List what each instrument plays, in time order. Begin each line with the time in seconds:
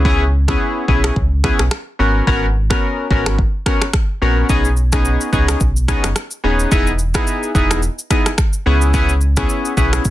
Already playing: sub bass C#2
0.05 synth keys B3 C#4 E4 G#4, kick
0.48 synth keys B3 C#4 E4 G#4, finger snap, kick, cross-stick
0.88 sub bass B1, synth keys B3 C#4 E4 G#4, kick
1.04 finger snap, cross-stick
1.16 sub bass C#2, kick
1.44 synth keys B3 C#4 E4 G#4, finger snap, kick, cross-stick
1.59 sub bass B1, finger snap, cross-stick
1.71 finger snap, cross-stick
1.99 sub bass G#1, synth keys B3 C#4 F#4 A#4
2.27 sub bass G#1, synth keys B3 C#4 F#4 A#4, kick
2.70 synth keys B3 C#4 F#4 A#4, finger snap, kick, cross-stick
3.10 sub bass G#1, synth keys B3 C#4 F#4 A#4, kick
3.26 finger snap, cross-stick
3.39 kick
3.66 synth keys B3 C#4 F#4 A#4, finger snap, kick, cross-stick
3.82 finger snap, cross-stick
3.93 finger snap, kick, cross-stick
4.22 sub bass A#1, synth keys B3 C#4 F#4 A#4
4.49 sub bass B1, synth keys B3 C#4 D#4 G#4, kick, shaker
4.65 shaker
4.77 shaker
4.92 synth keys B3 C#4 D#4 G#4, finger snap, kick, cross-stick, shaker
5.05 shaker
5.21 shaker
5.33 sub bass C#2, synth keys B3 C#4 D#4 G#4, kick, shaker
5.48 finger snap, cross-stick, shaker
5.60 sub bass B1, kick, shaker
5.76 shaker
5.88 synth keys B3 C#4 D#4 G#4, finger snap, kick, cross-stick, shaker
6.04 sub bass F#1, finger snap, cross-stick, shaker
6.16 finger snap, cross-stick, shaker
6.31 shaker
6.44 sub bass D#1, synth keys B3 C#4 D#4 G#4
6.59 shaker
6.71 sub bass E1, synth keys B3 D#4 E4 G#4, kick, shaker
6.87 shaker
6.99 shaker
7.14 synth keys B3 D#4 E4 G#4, finger snap, kick, cross-stick, shaker
7.27 shaker
7.43 shaker
7.55 sub bass E1, synth keys B3 D#4 E4 G#4, kick, shaker
7.71 finger snap, cross-stick, shaker
7.83 shaker
7.99 shaker
8.10 synth keys B3 D#4 E4 G#4, finger snap, kick, cross-stick, shaker
8.26 finger snap, cross-stick, shaker
8.38 finger snap, kick, cross-stick, shaker
8.53 shaker
8.66 sub bass C#2, synth keys B3 C#4 E4 G#4
8.82 shaker
8.94 synth keys B3 C#4 E4 G#4, kick, shaker
9.09 shaker
9.21 shaker
9.37 synth keys B3 C#4 E4 G#4, finger snap, kick, cross-stick, shaker
9.49 shaker
9.65 shaker
9.77 sub bass B1, synth keys B3 C#4 E4 G#4, kick, shaker
9.93 finger snap, cross-stick, shaker
10.05 sub bass C#2, kick, shaker